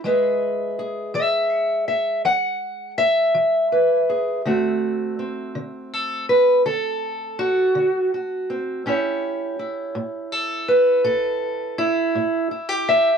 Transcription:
steel-string acoustic guitar
0.04 E3 G#3 G#4 B4 E5
0.79 G#4
1.14 E3 E5
1.52 C#5
1.88 E5
2.25 E3 F#5
2.98 E5
3.35 E3
3.72 B4
4.10 G#4
4.45 D3 A3 C4 F#4
5.19 C4
5.55 D3
5.93 A4
6.29 B4
6.65 D3 A4
7.39 F#4
7.75 D3
8.14 F#4
8.50 C4
8.86 A2 C#4 E4 G4 C#5
9.59 E4
9.95 A2
10.32 A4
10.68 B4
11.04 A2 A4
11.78 E4
12.15 A2
12.51 E4
12.69 G4
12.89 E5

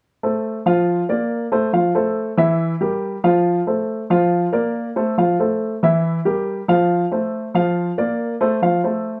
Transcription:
upright piano
0.23 A3 A4 C5
0.66 F3 F4 F5
1.09 A#3 A#4 D5
1.52 A3 A4 C5
1.73 F3 F4 F5
1.95 A3 A4 C5
2.38 E3 E4 E5
2.81 G3 G4 A#4
3.24 F3 F4 F5
3.67 A3 A4 C5
4.10 F3 F4 F5
4.53 A#3 A#4 D5
4.96 A3 A4 C5
5.18 F3 F4 F5
5.40 A3 A4 C5
5.83 E3 E4 E5
6.25 G3 G4 A#4
6.68 F3 F4 F5
7.11 A3 A4 C5
7.54 F3 F4 F5
7.98 A#3 A#4 D5
8.41 A3 A4 C5
8.62 F3 F4 F5
8.84 A3 A4 C5

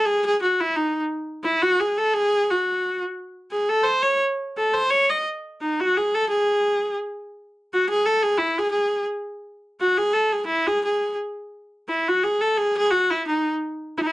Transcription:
viola
0.05 G#4
0.26 G#4
0.42 F#4
0.60 E4
0.76 D#4
1.44 E4
1.62 F#4
1.80 G#4
1.98 A4
2.13 G#4
2.50 F#4
3.51 G#4
3.69 A4
3.83 C5
4.02 C#5
4.57 A4
4.74 C5
4.90 C#5
5.10 D#5
5.61 D#4
5.80 F#4
5.97 G#4
6.14 A4
6.29 G#4
7.73 F#4
7.89 G#4
8.06 A4
8.23 G#4
8.38 E4
8.58 G#4
8.71 G#4
9.80 F#4
9.98 G#4
10.13 A4
10.32 G#4
10.46 E4
10.67 G#4
10.84 G#4
11.88 E4
12.08 F#4
12.24 G#4
12.41 A4
12.57 G#4
12.77 G#4
12.91 F#4
13.10 E4
13.27 D#4
13.98 E4
14.02 D#4
14.07 E4

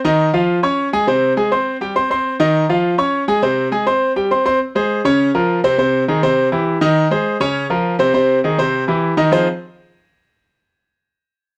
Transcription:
grand piano
0.04 D#3 D#4 D#5
0.34 F3 F4 F5
0.63 C#4 C#5 C#6
0.93 G#3 G#4 G#5
1.07 C3 C4 C5
1.37 G#3 G#4 G#5
1.52 C4 C5 C6
1.81 G3 G4 G5
1.96 C4 C5 C6
2.10 C4 C5 C6
2.40 D#3 D#4 D#5
2.69 F3 F4 F5
2.98 C#4 C#5 C#6
3.28 G#3 G#4 G#5
3.42 C3 C4 C5
3.71 G#3 G#4 G#5
3.87 C4 C5 C6
4.16 G3 G4 G5
4.31 C4 C5 C6
4.46 C4 C5 C6
4.75 G#3 G#4 C5
5.05 C#3 C#4 C#5
5.34 F3 F4 A#4
5.64 C3 C4 C5
5.78 C3 C4 C5
6.08 D#3 D#4 G#4
6.23 C3 C4 C5
6.52 E3 E4 G4
6.81 D#3 D#4 D#5
7.11 G#3 G#4 C5
7.40 C#3 C#4 C#5
7.70 F3 F4 A#4
7.99 C3 C4 C5
8.14 C3 C4 C5
8.44 D#3 D#4 G#4
8.58 C3 C4 C5
8.88 E3 E4 G4
9.17 D#3 D#4 D#5
9.32 F3 C4 D#4 F4 G#4 C5

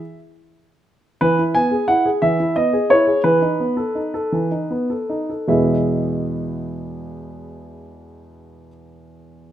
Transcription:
grand piano
Already playing: E5
1.21 E3 B4
1.39 E4
1.55 B3 G#5
1.71 G#4
1.88 E4 F#5
2.06 G#4
2.22 E3 E5
2.40 E4
2.56 B3 D#5
2.73 G#4
2.90 E4 C#5
3.07 G#4
3.24 E3 B4
3.42 D#4
3.60 B3
3.77 A4
3.95 D#4
4.14 A4
4.32 E3
4.51 D#4
4.70 B3
4.90 A4
5.09 D#4
5.30 A4
5.48 E2 B2 G#3 B3 E4 G#4 E5

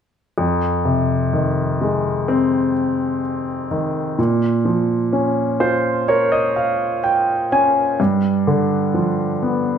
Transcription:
grand piano
0.38 F2
0.85 C3
1.33 D#3
1.81 G#3
2.28 C4
3.71 D#3
4.18 A#2
4.65 F3
5.13 C#4
5.60 F4 C5
6.08 A#4 C#5
6.32 D#5
6.56 F5
7.04 G5
7.52 C#4 G#5
8.00 G2
8.47 D3
8.94 F3
9.42 B3

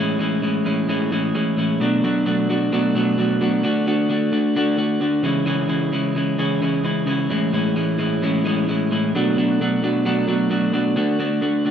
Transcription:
clean electric guitar
Already playing: A2 E3 G#3
0.00 C#4 E4
0.19 A2 E3 G#3 C#4 E4
0.42 A2 E3 G#3 C#4 E4
0.65 A2 E3 G#3 C#4 E4
0.88 A2 E3 G#3 C#4 E4
1.11 A2 E3 G#3 C#4 E4
1.34 A2 E3 G#3 C#4 E4
1.57 A2 E3 G#3 C#4 E4
1.80 B2 F#3 A3 D4 F#4
2.03 B2 F#3 A3 D4 F#4
2.25 B2 F#3 A3 D4 F#4
2.49 B2 F#3 A3 D4 F#4
2.72 B2 F#3 A3 D4 F#4
2.94 B2 F#3 A3 D4 F#4
3.18 B2 F#3 A3 D4 F#4
3.41 B2 F#3 A3 D4 F#4
3.63 D3 A3 D4 F#4
3.86 D3 A3 D4 F#4
4.09 D3 A3 D4 F#4
4.32 D3 A3 D4 F#4
4.56 D3 A3 D4 F#4
4.77 D3 A3 D4 F#4
5.00 D3 A3 D4 F#4
5.23 C#3 E3 G#3 C#4 E4
5.45 C#3 E3 G#3 C#4 E4
5.68 C#3 E3 G#3 C#4 E4
5.92 C#3 E3 G#3 C#4 E4
6.15 C#3 E3 G#3 C#4 E4
6.38 C#3 E3 G#3 C#4 E4
6.61 C#3 E3 G#3 C#4 E4
6.84 C#3 E3 G#3 C#4 E4
7.06 C#3 E3 G#3 C#4 E4
7.30 A2 E3 G#3 C#4 E4
7.52 A2 E3 G#3 C#4 E4
7.75 A2 E3 G#3 C#4 E4
7.98 A2 E3 G#3 C#4 E4
8.22 A2 E3 G#3 C#4 E4
8.45 A2 E3 G#3 C#4 E4
8.67 A2 E3 G#3 C#4 E4
8.91 A2 E3 G#3 C#4 E4
9.15 B2 F#3 A3 D4 F#4
9.37 B2 F#3 A3 D4 F#4
9.60 B2 F#3 A3 D4 F#4
9.82 B2 F#3 A3 D4 F#4
10.05 B2 F#3 A3 D4 F#4
10.27 B2 F#3 A3 D4 F#4
10.50 B2 F#3 A3 D4 F#4
10.72 B2 F#3 A3 D4 F#4
10.96 D3 A3 D4 F#4
11.19 D3 A3 D4 F#4
11.41 D3 A3 D4 F#4
11.65 D3 A3 D4 F#4

